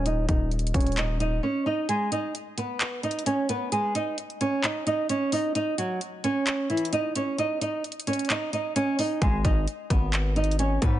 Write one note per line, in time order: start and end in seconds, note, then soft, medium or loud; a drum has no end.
0.00 0.27 D#1 loud
0.06 0.26 D#4 medium
0.06 0.26 D#5 medium
0.06 closed hi-hat medium
0.28 0.73 D#1 loud
0.28 0.49 D#4 medium
0.28 0.49 D#5 medium
0.28 kick medium
0.28 closed hi-hat medium
0.51 closed hi-hat soft
0.59 closed hi-hat medium
0.67 closed hi-hat medium
0.74 1.40 D#1 loud
0.74 0.95 C#4 medium
0.74 0.95 C#5 medium
0.74 kick loud
0.74 closed hi-hat medium
0.80 closed hi-hat medium
0.87 closed hi-hat medium
0.92 closed hi-hat soft
0.97 1.18 D#4 medium
0.97 1.18 D#5 medium
0.97 clap loud
0.97 closed hi-hat medium
1.20 1.41 D#4 medium
1.20 1.41 D#5 medium
1.20 closed hi-hat medium
1.43 1.63 C#4 medium
1.43 1.64 C#5 medium
1.66 1.86 D#4 medium
1.66 1.87 D#5 medium
1.89 2.10 G#3 medium
1.89 2.09 G#4 medium
1.89 closed hi-hat medium
2.12 2.32 D#4 medium
2.12 2.33 D#5 medium
2.12 closed hi-hat medium
2.35 closed hi-hat medium
2.58 3.01 B3 medium
2.58 3.01 B4 medium
2.58 closed hi-hat medium
2.81 clap loud
2.81 closed hi-hat medium
3.03 3.24 D#4 medium
3.03 3.24 D#5 medium
3.03 closed hi-hat medium
3.11 closed hi-hat medium
3.19 closed hi-hat medium
3.26 3.47 C#4 medium
3.26 3.47 C#5 medium
3.26 closed hi-hat loud
3.49 3.70 B3 medium
3.49 3.70 B4 medium
3.49 closed hi-hat medium
3.72 3.93 G#3 medium
3.72 3.93 G#4 medium
3.72 closed hi-hat medium
3.95 4.15 D#4 medium
3.95 4.16 D#5 medium
3.95 closed hi-hat medium
4.18 closed hi-hat medium
4.30 closed hi-hat soft
4.41 4.61 C#4 medium
4.41 4.62 C#5 medium
4.41 closed hi-hat medium
4.64 4.84 D#4 medium
4.64 4.85 D#5 medium
4.64 clap loud
4.64 closed hi-hat medium
4.87 5.07 D#4 medium
4.87 5.07 D#5 medium
4.87 closed hi-hat medium
5.09 5.30 C#4 medium
5.09 5.30 C#5 medium
5.09 closed hi-hat medium
5.32 5.53 D#4 medium
5.32 5.53 D#5 medium
5.32 open hi-hat medium
5.55 5.76 D#4 medium
5.55 5.76 D#5 medium
5.55 closed hi-hat medium
5.78 5.99 F#3 medium
5.78 5.99 F#4 medium
5.78 closed hi-hat medium
6.01 closed hi-hat medium
6.24 6.67 C#4 medium
6.24 6.68 C#5 medium
6.24 closed hi-hat medium
6.47 clap loud
6.47 closed hi-hat medium
6.70 6.91 E3 medium
6.70 6.90 E4 medium
6.70 closed hi-hat medium
6.77 closed hi-hat medium
6.85 closed hi-hat medium
6.93 7.13 D#4 medium
6.93 7.13 D#5 medium
6.93 closed hi-hat loud
7.15 7.36 C#4 medium
7.15 7.36 C#5 medium
7.15 closed hi-hat medium
7.38 7.59 D#4 medium
7.38 7.59 D#5 medium
7.38 closed hi-hat medium
7.61 7.82 D#4 medium
7.61 7.82 D#5 medium
7.61 closed hi-hat medium
7.84 closed hi-hat soft
7.92 closed hi-hat medium
8.00 closed hi-hat medium
8.07 8.28 C#4 medium
8.07 8.28 C#5 medium
8.07 closed hi-hat medium
8.13 closed hi-hat medium
8.19 closed hi-hat medium
8.25 closed hi-hat soft
8.30 8.50 D#4 medium
8.30 8.51 D#5 medium
8.30 clap loud
8.30 closed hi-hat medium
8.53 8.73 D#4 medium
8.53 8.74 D#5 medium
8.53 closed hi-hat medium
8.76 8.96 C#4 medium
8.76 8.97 C#5 medium
8.76 closed hi-hat loud
8.99 9.19 D#4 medium
8.99 9.20 D#5 medium
8.99 open hi-hat medium
9.22 9.44 G#1 loud
9.22 9.42 G#3 medium
9.22 9.42 G#4 medium
9.22 kick loud
9.22 closed hi-hat medium
9.44 9.67 G#1 loud
9.44 9.65 D#4 medium
9.44 9.65 D#5 medium
9.44 kick medium
9.44 closed hi-hat medium
9.68 closed hi-hat medium
9.90 10.78 G#1 loud
9.90 10.33 B3 medium
9.90 10.34 B4 medium
9.90 kick medium
9.90 closed hi-hat medium
10.13 clap loud
10.13 closed hi-hat medium
10.36 10.57 D#4 medium
10.36 10.57 D#5 medium
10.36 closed hi-hat medium
10.44 closed hi-hat medium
10.51 closed hi-hat medium
10.59 10.79 C#4 medium
10.59 10.80 C#5 medium
10.59 closed hi-hat loud
10.82 10.99 G#2 loud
10.82 10.99 B3 medium
10.82 10.99 B4 medium
10.82 kick loud
10.82 closed hi-hat medium